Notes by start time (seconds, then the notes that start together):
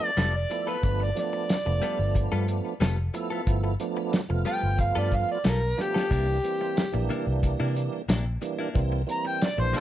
Already playing: F3 A3 B3 D4 E5
0.06 D5
0.17 F1 G3 B3 F4 A4, snare, closed hi-hat, tambourine
0.34 D5, muted clean electric guitar stroke
0.50 F3 A3 B3 E4, muted clean electric guitar stroke, closed hi-hat
0.67 B3 F4 A4 B4
0.83 G1 F3 A3 B3 D4, kick, closed hi-hat
1.00 D5, muted clean electric guitar stroke
1.15 F3 A3 B3 D4 D5, snare, closed hi-hat
1.33 muted clean electric guitar stroke
1.49 snare, closed hi-hat, tambourine
1.65 F1 F3 A3 B3 D4, muted clean electric guitar stroke
1.82 G3 B3 F4 A4, closed hi-hat
1.99 G1, muted clean electric guitar stroke
2.15 muted clean electric guitar stroke, kick, closed hi-hat
2.32 G2 G3 B3 F4 A4
2.48 muted clean electric guitar stroke, closed hi-hat
2.80 F1 G3 B3 F4 A4, snare, closed hi-hat, tambourine
2.97 muted clean electric guitar stroke
3.14 F3 A3 B3 E4, muted clean electric guitar stroke, closed hi-hat
3.30 B3 F4 A4
3.47 G1 F3 A3 B3 E4, kick, closed hi-hat
3.64 muted clean electric guitar stroke
3.80 F3 A3 B3 D4, closed hi-hat
3.97 muted clean electric guitar stroke
4.13 snare, closed hi-hat, tambourine
4.29 F1 F3 A3 B3 F4, muted clean electric guitar stroke
4.45 G3 B3 F4 A4 G5, closed hi-hat
4.63 G1, muted clean electric guitar stroke
4.78 F5, muted clean electric guitar stroke, kick, closed hi-hat
4.95 G2 G3 B3 F4 A4 D5
5.12 F5, kick, closed hi-hat
5.32 D5
5.44 B1 G3 B3 F4 A4, snare, closed hi-hat, tambourine
5.49 A#4
5.62 muted clean electric guitar stroke
5.77 F3 A3 B3 D4, muted clean electric guitar stroke, snare
5.81 G4
5.94 B3 F4 A4, snare
6.10 C2 C3 E3 G3 A#3 D4 E4, kick, closed hi-hat
6.28 muted clean electric guitar stroke
6.43 E3 G3 A#3 C4, closed hi-hat
6.61 muted clean electric guitar stroke
6.77 snare, closed hi-hat, tambourine
6.92 A#1 E3 G3 A#3 D4, muted clean electric guitar stroke
7.09 C3 A#3 D4 E4, closed hi-hat
7.27 C2, muted clean electric guitar stroke
7.43 muted clean electric guitar stroke, kick, closed hi-hat
7.60 C3 A#3 D4 E4
7.76 muted clean electric guitar stroke, closed hi-hat
8.09 A#1 C3 A#3 D4 E4, snare, closed hi-hat, tambourine
8.26 muted clean electric guitar stroke
8.41 E3 G3 A#3 D4, muted clean electric guitar stroke, closed hi-hat
8.59 A#3 D4 E4
8.74 C2 E3 G3 A#3 C4, kick, closed hi-hat
8.92 muted clean electric guitar stroke
9.07 E3 G3 A#3 C4, closed hi-hat
9.12 A#5
9.25 G5, muted clean electric guitar stroke
9.42 D5, snare, closed hi-hat, tambourine
9.57 A#1 E3 G3 A#3 D4 C5, muted clean electric guitar stroke
9.73 C3 A#3 D4 E4 F4 A4 C5, closed hi-hat